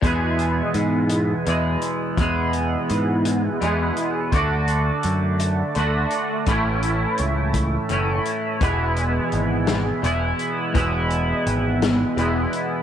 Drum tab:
HH |xxxxxx|xxxxxx|xxxxxx|xxxxxx|
SD |------|------|------|------|
BD |o-----|o-----|o-----|o--o--|

HH |xxxxxx|xxxxxx|
SD |---o--|---o--|
BD |o-----|o-----|